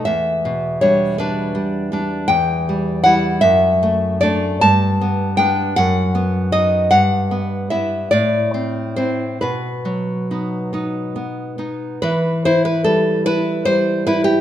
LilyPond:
\new Staff \with { instrumentName = "Nylon-string guitar" } { \time 6/8 \key e \dorian \tempo 4. = 50 << { e''4 cis''8 b'8 r4 | \key e \minor g''4 fis''8 e''4 d''8 | a''4 g''8 fis''4 dis''8 | fis''4 e''8 d''4 c''8 |
b'4. r4. | b'8 c''16 b'16 a'8 b'8 c''8 b'16 g'16 | } \\ { e,8 b,8 <g d'>8 <g d'>8 g8 <g d'>8 | e,8 g8 <g e'>8 fis,8 a8 <a d'>8 | g,8 b8 <b d'>8 fis,8 b8 <b dis'>8 | g,8 b8 <b e'>8 a,8 c'8 <c' e'>8 |
b,8 fis8 <b dis'>8 <b dis'>8 b8 <b dis'>8 | e8 e'8 g8 e'8 g8 e'8 | } >> }